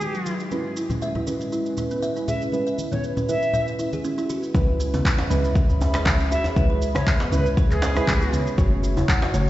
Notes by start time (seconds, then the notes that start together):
Already playing: G#3 D#4 F#4 G#4 B4
0.00 G#3, muted conga, shaker
0.15 F#3, shaker
0.26 F#3, muted conga, shaker
0.40 shaker
0.51 G#3 C#4 E4 B4, muted conga, shaker
0.77 E4, shaker
0.90 C#4, muted conga, high conga, low conga, shaker
1.02 E5, high conga, shaker
1.15 E4, muted conga, low conga
1.27 G#3 C#4 E4 B4, high conga, shaker
1.41 muted conga, shaker
1.52 E4, shaker
1.66 shaker
1.77 E4, muted conga, low conga, shaker
1.91 B3, shaker
2.03 E5, muted conga, shaker
2.17 E4, shaker
2.27 G#4 E5, muted conga, low conga, shaker
2.42 shaker
2.52 G#3 C#4 E4 B4, muted conga, shaker
2.67 E5, shaker
2.78 high conga, shaker
2.91 B3 C#5, muted conga, high conga, low conga, shaker
3.03 high conga, shaker
3.17 C#4, muted conga, low conga, shaker
3.28 G#3 C#4 E4 B4 E5, high conga, shaker
3.43 muted conga, shaker
3.53 E5, low conga, shaker
3.68 shaker
3.79 E4, muted conga, shaker
3.93 G#4, high conga, shaker
4.04 C#4, muted conga, shaker
4.18 E4, shaker
4.30 F#4, muted conga, shaker
4.43 shaker
4.54 C#2 G#3 C#4 E4 G#4 B4 C#5 E5 B5, kick, shaker
4.80 C#4, shaker
4.94 B1 B3, mid tom, djembe tone, shaker
5.05 C#5, kick, clap, shaker
5.18 C#4, djembe slap
5.30 C#2 G#3 C#4 E4 B4, mid tom, shaker
5.45 shaker
5.55 C#4, kick, shaker
5.69 C#2, shaker
5.81 C#4, djembe tone, shaker
5.94 G#3, cross-stick, djembe slap, shaker
6.05 C#2 C#5, kick, clap, djembe slap, shaker
6.20 C#4, shaker
6.31 F#4 E5, djembe tone, shaker
6.44 djembe tone, shaker
6.56 C#2 G#3 C#4 E4 B4, kick, shaker
6.70 C#5
6.82 shaker
6.95 B1 G#3 C#5, cross-stick, mid tom, djembe tone, shaker
7.07 kick, clap, shaker
7.20 B3, djembe slap, shaker
7.32 C#2 G#3 C#4 E4 B4, mid tom, shaker
7.46 shaker
7.57 C#5, kick, shaker
7.71 C#2 G#4, clap, shaker
7.82 C#4, djembe slap, shaker
7.96 G#3 C#4 E4 B4, cross-stick, djembe tone, shaker
8.07 C#2 C#4, kick, clap, djembe tone, shaker
8.22 B3, shaker
8.32 B3, mid tom, djembe tone, shaker
8.47 shaker
8.58 F#1 A3 C#4 F#4 A4 C#5 F#5 C#6, kick, shaker
8.83 F#4, shaker
8.97 E1 E4, mid tom, djembe tone, shaker
9.08 F#5, kick, clap, shaker
9.22 F#4, djembe slap
9.34 F#1 A3 C#4 F#4 C#5, mid tom, shaker